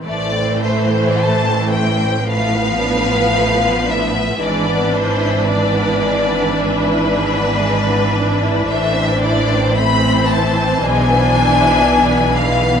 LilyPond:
<<
  \new Staff \with { instrumentName = "Violin section" } { \time 4/4 \key a \minor \tempo 4 = 56 d''8 c''8 a''8 g''8 f''4. e''8 | d''8 c''8 d''4 b'2 | e''8 d''8 b''8 a''8 gis''4. f''8 | }
  \new Staff \with { instrumentName = "Violin section" } { \time 4/4 \key a \minor << { c''2 b'2 | b'1 | c''2. b'4 | } \\ { a16 c'16 a16 c'16 a16 c'16 a16 c'16 a16 b16 d'16 b16 a16 b16 d'16 b16 | gis16 b16 d'16 e'16 d'16 b16 gis16 b16 d'16 e'16 d'16 b16 gis16 b16 d'16 e'16 | a16 c'16 e'16 c'16 a16 c'16 e'16 c'16 gis16 b16 d'16 e'16 d'16 b16 gis16 b16 | } >> }
  \new Staff \with { instrumentName = "Viola section" } { \time 4/4 \key a \minor << { a2 b2 | d'1~ | d'4 c'4 d'2 | } \\ { e2 f2 | e1 | e1 | } >> }
  \new Staff \with { instrumentName = "Cello section" } { \clef bass \time 4/4 \key a \minor a,1 | gis,1 | a,2 b,2 | }
  \new Staff \with { instrumentName = "Double bass section" } { \clef bass \time 4/4 \key a \minor a,,1 | gis,,1 | a,,2 b,,2 | }
>>